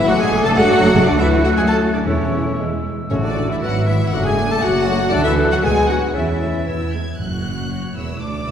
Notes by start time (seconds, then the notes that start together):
0.06 F#1 F#3 A3 D4 F#4 A4 F#5 D6
0.19 G#3 G#4 G#5
0.32 F#1 A3
0.43 F#1 A3 A4 A5
0.56 F#1 F#3 G#3 F#4 F#5
0.70 F#1 A3
0.82 F#1 A3
0.95 F#1 G#3
1.05 D2 D3 F#3 A3 D4 F#4 D5 F#6
1.19 E3 E4 E5
1.44 F#3 F#4 F#5
1.56 F#2 G#3 G#4 G#5
1.67 A3 A4 A5
1.93 D3 D4 D5
2.06 E2 C#3 E3 A3 C#4 E4 C#5 E6
2.59 E2 E3 G#3
3.10 A1 A2 C#3 A3 C#4 F#4 C#5
3.23 D3 D4 D5
3.36 E3 A3
3.49 E3 E4 E5
3.62 G#1 F#3 B3 E4 F#4 F#5
3.86 E3 B3 E4 E5
4.12 F#1 F#3 A3 D4 F#4 F#5 D6
4.25 G#3 G#4 G#5
4.38 A3 D4
4.51 A3 A4 A5
4.62 F#1 F#3 F#4 F#5
4.89 A3 D4
5.11 D2 D3 A3 D4 A4 D5 F#6
5.24 E3 E4 E5
5.38 F#3 D4
5.50 F#3 F#4 F#5
5.63 D2 G#3 B3 F#4 G#4 G#5 F#6
5.88 F#3 B3 F#4 F#5 G#6
6.14 E2 E3 C#4 E4 E5 A6
6.42 A3 C#4
6.67 E2 B3 E6 G#6
6.93 G#3 B3 G#6
7.19 F#1 F#2 A2 F#4 F#6
7.70 C#5
7.94 E1 E2 E4 E6
8.20 D2 D4 D5 D6
8.45 E1 E2 E4 E6